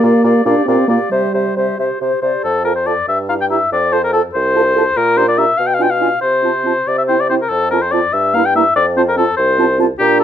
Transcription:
Already playing: french horn A#3
0.03 bassoon A#2, clarinet G4, oboe D5, flute F5
0.24 bassoon A#2, clarinet G4, oboe D5, flute F5
0.45 bassoon A#2, french horn D4, clarinet G4, oboe D5, flute F5
0.66 bassoon A#2, french horn C4, clarinet G4, oboe D5, flute F5
0.88 bassoon A#2, french horn A#3, clarinet G4, oboe D5, flute F5
1.10 bassoon C3, french horn G3, clarinet G4, oboe C5, flute E5
1.34 bassoon C3, clarinet G4, oboe C5, flute E5
1.56 bassoon C3, clarinet G4, oboe C5, flute E5
1.78 bassoon C3, clarinet G4, oboe C5, flute E5
2.00 bassoon C3, clarinet G4, flute C5, oboe C5
2.22 bassoon C3, clarinet G4, oboe C5, flute D5
2.43 bassoon F2, oboe A4
2.65 french horn F4, clarinet A4, oboe A#4, flute A5
2.76 oboe C5
2.86 french horn F4, clarinet A4, oboe D5, flute A5
3.08 bassoon G2, oboe E5
3.29 french horn E4, clarinet G4, oboe F5, flute A#5
3.41 oboe G5
3.50 french horn E4, clarinet G4, oboe E5, flute A#5
3.72 bassoon F2, oboe D5
3.92 french horn F4, clarinet A4, oboe C5, flute A5
4.04 oboe A#4
4.13 french horn F4, oboe A4, clarinet A4, flute A5
4.34 bassoon C2, oboe C5
4.55 french horn F4, clarinet A4, flute A5
4.75 french horn F4, clarinet A4, flute A5
4.97 bassoon A#2, oboe A#4
5.17 french horn D4, clarinet G4, oboe C5, flute A#5
5.28 oboe D5
5.38 french horn D4, clarinet G4, oboe E5, flute A#5
5.57 bassoon B2, oboe F5
5.67 oboe G5
5.74 oboe F5
5.79 french horn D4, clarinet F4, oboe G5, flute G#5
5.91 oboe F5
6.00 french horn D4, clarinet F4, flute G#5
6.21 bassoon C3, oboe C5
6.43 french horn C4, clarinet F4, flute A5
6.64 french horn C4, clarinet F4, flute A5
6.87 bassoon C3, oboe D5
6.98 oboe E5
7.08 french horn C4, clarinet E4, oboe C5, flute G5
7.20 oboe D5
7.29 french horn C4, clarinet E4, oboe C5, flute G5
7.41 oboe A#4
7.50 bassoon F2, oboe A4
7.70 french horn C4, clarinet F4, oboe A#4, flute A5
7.82 oboe C5
7.92 french horn C4, clarinet F4, oboe D5, flute A5
8.13 bassoon G2, oboe E5
8.33 french horn A#3, clarinet E4, oboe F5, flute A#5
8.46 oboe G5
8.54 french horn A#3, clarinet E4, oboe E5, flute A#5
8.76 bassoon F2, oboe D5
8.97 french horn C4, clarinet F4, oboe C5, flute A5
9.08 oboe A#4
9.16 french horn C4, clarinet F4, oboe A4, flute A5
9.37 bassoon C2, oboe C5
9.58 french horn C4, clarinet F4, flute A5
9.79 french horn C4, clarinet F4, flute A5
9.99 bassoon A#2, french horn D4, oboe G4, clarinet G4, flute A#5
10.20 oboe A4

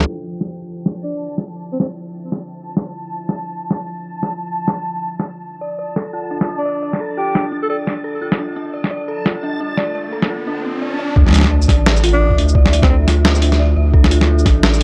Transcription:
0.01 snare
0.06 ambient pad D4 F4 E5, synth texture A5
0.41 snare
0.86 snare
1.03 alto saxophone D4
1.38 snare
1.72 alto saxophone C4
1.80 alto saxophone C4, snare
2.32 snare
2.77 snare
3.29 snare
3.71 snare
4.23 snare
4.68 snare
5.20 snare
5.61 synth bell D5, ambient pad D5
5.79 synth bell D5
5.96 synth bell A4, snare
6.13 synth bell F4
6.31 synth bell D4
6.41 snare
6.48 synth bell D4
6.58 alto saxophone D4
6.65 synth bell D5
6.83 synth bell D5
6.93 snare
7.00 synth bell A4
7.17 synth bell F4, alto saxophone G4
7.35 synth bell D4, snare
7.52 synth bell D4
7.63 alto saxophone A4
7.69 alto saxophone A4, synth bell D5
7.87 synth bell D5, snare
8.04 synth bell A4
8.21 synth bell F4
8.32 snare
8.39 synth bell D4, riser
8.56 synth bell D4
8.74 synth bell D5
8.84 snare
8.91 synth bell D5
9.08 synth bell A4
9.26 synth bell F4, snare
9.43 synth bell D4
9.60 synth bell D4
9.77 synth bell D5, snare
9.95 synth bell D5
10.12 synth bell A4
10.22 snare
10.30 synth bell F4
10.47 synth bell D4
10.64 synth bell D4
10.82 synth bell D5
10.99 synth bell D5
11.16 sub bass D2, synth bell D4, ambient pad D4 F4 E5, kick, sub drop
11.27 snare
11.29 snare
11.31 snare
11.33 synth bell D4, snare, closed hi-hat, shaker
11.36 snare
11.39 snare
11.41 snare
11.44 snare
11.51 synth bell D5
11.62 shaker
11.68 sub bass A1, synth bell D5, kick, snare, closed hi-hat
11.86 synth bell A4, snare
11.96 shaker
12.04 synth bell F4, closed hi-hat
12.09 closed hi-hat
12.13 alto saxophone D4
12.21 synth bell D4
12.30 kick
12.38 sub bass D2, synth bell D4, closed hi-hat
12.48 shaker
12.55 synth bell D5, kick
12.66 snare
12.73 synth bell D5, closed hi-hat, shaker
12.82 alto saxophone C4, kick, snare
12.89 alto saxophone C4, synth bell A4
13.07 sub bass D2, synth bell F4, snare, closed hi-hat
13.25 synth bell D4, snare
13.35 shaker
13.42 synth bell D4, closed hi-hat
13.52 snare, closed hi-hat
13.59 synth bell D5
13.76 sub bass D2, synth bell D5
13.94 sub bass D2, synth bell A4, ambient pad A4, kick
14.04 snare
14.11 synth bell F4, closed hi-hat, shaker
14.21 snare
14.28 synth bell D4
14.39 shaker
14.46 sub bass A1, synth bell D4, kick, snare, closed hi-hat
14.63 synth bell D5, snare
14.73 shaker

